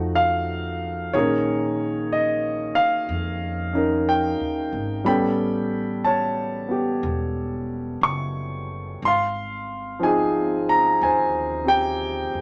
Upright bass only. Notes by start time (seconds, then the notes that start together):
Already playing: F2
1.14 A#1
2.77 muted upright bass stroke
3.09 F2
4.40 D#2
4.73 G#1
5.06 A1
7.03 E1
8.01 F#1
9.02 G#1
11.01 D#2
12.34 F2